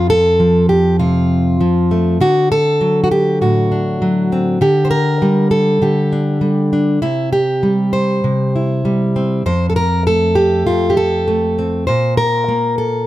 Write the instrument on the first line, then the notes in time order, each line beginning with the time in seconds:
steel-string acoustic guitar
Already playing: F2
0.10 A4
0.40 F3
0.69 G4
0.99 C3 F4
1.61 F3
1.91 A3
2.21 D3 F#4
2.52 A4
2.81 F#3
3.04 F#4
3.11 G4
3.41 A2 F#4
3.72 D4
4.02 F#3
4.32 C4
4.61 D3 G4
4.85 C5
4.91 A#4
5.22 G3
5.51 A4
5.82 D3 G4
6.12 D4
6.41 G3
6.73 D4
7.02 C3 E4
7.33 G4
7.63 G3
7.93 C5
8.24 C3
8.56 E4
8.85 G3
9.16 C4
9.46 F2 C5
9.70 A4
9.76 A#4
10.07 A3 A4
10.35 G4
10.67 F2 F4
10.90 G4
10.97 A4
11.28 A3
11.59 C4
11.87 A#2 C5
12.17 A#4
12.48 A#3
12.78 A4